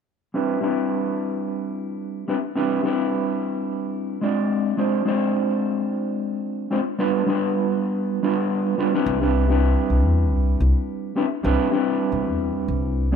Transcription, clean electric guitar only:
0.34 G3 C4 D4 E4 B4
0.61 G3 C4 D4 E4 B4
2.28 G3 C4 D4 E4 B4
2.55 G3 C4 D4 E4 B4
2.83 G3 C4 D4 E4 B4
4.21 G#3 C4 D4 F4 D5
4.77 G#3 C4 D4 F4 C5
5.05 G#3 C4 D4 F4 C5
6.71 G#3 C4 D4 F4 C5
6.98 G3 B3 D4 F4 B4
7.26 G3 B3 D4 F4 B4
8.23 G3 B3 D4 F4 B4
8.78 G3 B3 D4 F4 B4
8.94 G3 C4 D4 E4 B4
9.21 G3 C4 D4 E4 B4
9.48 G3 C4 D4 E4 B4
11.16 G3 C4 D4 E4 B4
11.43 G3 C4 D4 E4 B4
11.71 G3 C4 D4 E4 B4
13.12 G#3 C4 D4

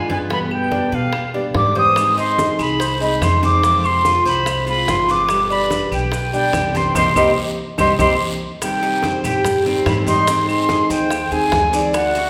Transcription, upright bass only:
Already playing: G2
0.93 B2
1.55 G#2
2.59 C2
3.21 F2
4.25 C2
4.87 G1
5.92 B1
6.53 C2
6.95 C2
7.16 C2
7.79 C2
7.99 C2
9.24 G2
9.86 G#2
10.90 D#2
11.31 D#2
11.52 D2

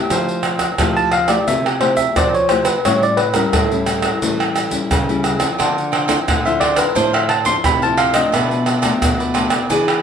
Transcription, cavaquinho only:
5.58 D4 A4 C5 F5
5.92 D4 A4 C5 F5
6.08 D4 A4 C5 F5
6.45 A4 C5 F5
6.61 D4 A4 C5 F5
6.76 A4 C5 F5
6.95 D4 A4 C5 F5
7.13 A4 C5 F5
7.45 D4 A4 C5 F5
7.82 A4 C5 F5
7.97 D4 A4 C5 F5
8.13 A4 C5 F5
8.32 F4 A4 B4 D5
8.66 F4 A4 B4 D5
8.82 F4 A4 B4 D5
9.19 A4 B4 D5
9.34 F4 A4 B4 D5
9.50 A4 B4 D5
9.70 E4 G#4 B4 D5
9.88 G#4 B4 D5

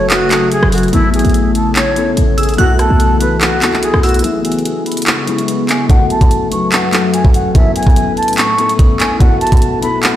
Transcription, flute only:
0.10 F#4
0.52 G#4
0.73 F#4
0.93 E4
1.14 G#4
1.55 A4
1.75 C#5
2.38 G#4
2.58 F#4
2.79 A4
3.21 B4
3.41 F#4
3.83 G#4
4.03 F#4
4.24 E5
4.45 G#5
4.86 B5
5.07 C#6
5.68 G#5
5.89 F#5
6.11 A5
6.51 C#6
6.72 F#5
7.14 G#5
7.35 F#5
7.55 E5
7.76 G#5
8.17 A5
8.37 C#6
9.00 G#5
9.20 F#5
9.41 A5
9.83 B5
10.03 F#5

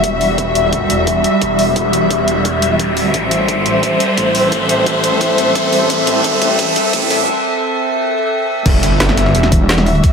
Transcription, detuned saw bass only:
Already playing: E1
0.38 E1
0.90 E1
1.42 E1
1.59 E1
1.93 E1
2.28 E1
2.88 D#1
3.14 A1
3.66 A1
4.17 A1
4.35 A1
4.69 A1
5.04 A1
5.90 A1
6.42 A1
6.93 A1
7.11 A1
8.66 E1
8.83 G1
9.35 E1

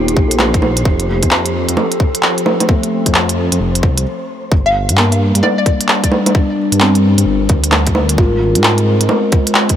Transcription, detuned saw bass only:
Already playing: D#1
0.16 A#1
0.85 F1
1.23 F2
1.69 F2
3.06 F2
3.52 F2
3.60 F1
3.83 C2
4.52 G1
4.89 G2
5.35 G2
6.72 G2
7.18 G2
7.26 G1
7.49 D2
8.18 G#1
8.55 G#2
9.01 G#2

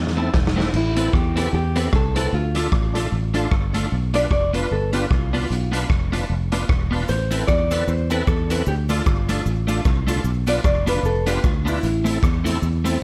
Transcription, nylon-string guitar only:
0.76 E4
1.15 G4
1.38 G4
1.54 G4
1.95 A4
2.17 A4
2.34 F4
4.15 D5
4.32 D5
4.54 B4
4.72 A4
4.94 G4
5.12 F4
5.33 F4
7.09 C5
7.47 D5
7.88 C5
8.28 A4
8.68 G4
8.90 F4
10.48 D5
10.64 D5
10.88 B4
11.05 A4
11.29 G4
11.45 F4
11.68 E4

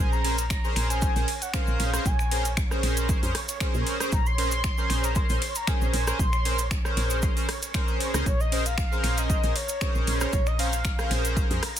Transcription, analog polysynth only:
Already playing: C#4 G#4 A#4 C5
0.24 C#4 G#4 A#4 C5
0.64 C#4 G#4 A#4 C5
1.16 C#4 G#4 A#4 C5
1.53 C#4 G#4 A#4 C5
1.93 C#4 G#4 A#4 C5
2.31 C#4 G#4 A#4 C5
2.71 C#4 G#4 A#4 C5
3.22 C#4 G#4 A#4 C5
3.60 C#4 G#4 A#4 C5
4.00 C#4 G#4 A#4 C5
4.38 C#4 G#4 A#4 C5
4.78 C#4 G#4 A#4 C5
5.29 C#4 G#4 A#4 C5
5.67 C#4 G#4 A#4 C5
6.07 C#4 G#4 A#4 C5
6.45 C#4 G#4 A#4 C5
6.85 C#4 G#4 A#4 C5
7.36 C#4 G#4 A#4 C5
7.74 C#4 G#4 A#4 C5
8.14 C#4 G#4 A#4 C5
8.52 C#4 G#4 A#4 C5
8.91 C#4 G#4 A#4 C5
9.43 C#4 G#4 A#4 C5
9.81 C#4 G#4 A#4 C5
10.21 C#4 G#4 A#4 C5
10.59 C#4 G#4 A#4 C5
10.98 C#4 G#4 A#4 C5
11.50 C#4 G#4 A#4 C5

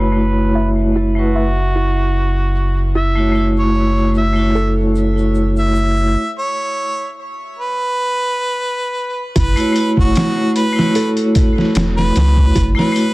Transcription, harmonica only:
0.00 B4
1.19 F#4
2.96 E5
3.59 C#5
4.18 E5
5.59 E5
6.39 C#5
7.59 B4
9.37 B4
9.99 F#4
10.56 B4
11.98 B4
12.78 B4

